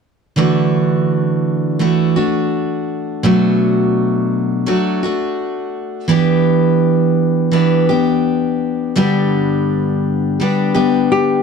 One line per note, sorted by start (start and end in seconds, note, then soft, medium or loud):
0.36 1.82 D3 medium
0.36 1.78 E3 medium
0.36 1.80 A3 medium
0.36 1.81 D4 medium
0.36 1.81 F#4 medium
1.79 2.15 E3 medium
1.79 2.16 A3 soft
1.79 2.16 D4 soft
1.79 2.15 F#4 medium
2.16 3.24 A3 soft
2.16 3.25 D4 soft
2.16 3.25 F#4 soft
3.23 4.67 B2 medium
3.23 4.65 F#3 medium
3.23 4.66 A3 medium
3.23 4.68 D4 medium
3.23 4.67 F#4 medium
4.66 5.02 F#3 medium
4.66 5.02 A3 medium
4.66 5.03 D4 medium
4.66 5.02 F#4 medium
5.03 6.09 A3 soft
5.03 6.09 D4 soft
5.03 6.10 F#4 soft
6.08 7.50 E3 medium
6.08 7.53 B3 medium
6.08 7.53 D4 medium
6.08 7.53 G4 medium
7.52 7.88 E3 medium
7.52 7.89 B3 medium
7.52 7.88 D4 medium
7.52 7.88 G4 medium
7.89 8.97 B3 soft
7.89 8.97 D4 soft
7.89 8.98 G4 soft
8.96 10.39 G2 medium
8.96 11.43 D3 medium
8.96 10.39 G3 medium
8.96 10.40 B3 medium
8.96 10.41 D4 medium
8.96 10.41 G4 medium
10.40 10.75 G3 medium
10.40 10.74 B3 medium
10.40 10.73 D4 medium
10.40 10.73 G4 medium
10.74 11.43 G3 soft
10.74 11.43 B3 soft
10.74 11.43 D4 soft
10.74 11.43 G4 medium
11.12 11.43 G4 medium